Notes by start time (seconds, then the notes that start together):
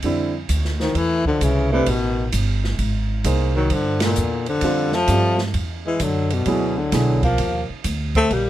0.02 F2 D3 G3 C4 E4, kick, ride
0.49 D2, kick, hi-hat pedal, ride
0.65 snare
0.80 D#3 F3, snare
0.95 E2 E3 A3, kick, ride
1.26 D3 F3, kick
1.41 C2 C#3 E3, kick, hi-hat pedal, ride
1.72 C3 E3 A3 D4 G4 B4
1.86 A1 B2 D#3, kick, ride
2.32 G1, kick, hi-hat pedal, ride
2.64 snare
2.79 G#1, kick, ride
3.24 C2 A#3 D#4 G#4 C5, kick, hi-hat pedal, ride
3.56 D#3 F#3
3.70 G2 D3 F3, kick, ride
4.00 A#2 D3, snare, ride
4.15 E2, hi-hat pedal
4.46 D3 F3, ride
4.61 F2 G3 C4 F4 A4, kick, ride
4.92 F3 A3, snare
5.08 G2 G3 C4 F4 G4, kick, hi-hat pedal, ride
5.38 snare
5.54 E2, kick, ride
5.86 E3 G#3
6.00 F#2 D3 F#3, kick, hi-hat pedal, ride
6.30 B2 D3, ride
6.46 D2 F#3 B3 E4 G#4, kick, ride
6.77 D3 F#3
6.92 B1 F#3 B3 E4 G#4, kick, snare, hi-hat pedal, ride
7.23 F3 A#3, kick, ride
7.38 D#2, kick, ride
7.70 muted upright bass stroke
7.84 D2, kick, hi-hat pedal, ride
8.15 A3 C4, kick, ride
8.31 A#1 G3 A#3, kick, ride